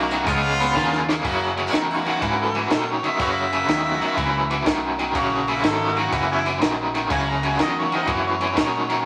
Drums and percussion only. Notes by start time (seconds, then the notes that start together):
0.11 closed hi-hat
0.27 kick, closed hi-hat
0.60 closed hi-hat
0.76 kick, snare
0.93 snare
1.09 snare
1.24 kick, ride
1.57 ride
1.73 snare, ride
2.06 ride
2.22 kick, ride
2.55 ride
2.70 snare, ride
3.04 ride
3.20 kick, ride
3.53 ride
3.69 snare, ride
4.02 ride
4.17 kick, ride
4.50 ride
4.66 kick, snare, ride
4.99 ride
5.15 kick, ride
5.48 ride
5.64 snare, ride
5.97 ride
6.12 kick, ride
6.46 ride
6.62 snare, ride
6.95 snare, ride
7.10 kick, ride
7.43 ride
7.59 snare, ride
7.92 ride
8.07 kick, ride
8.41 ride
8.57 kick, snare, ride
8.90 ride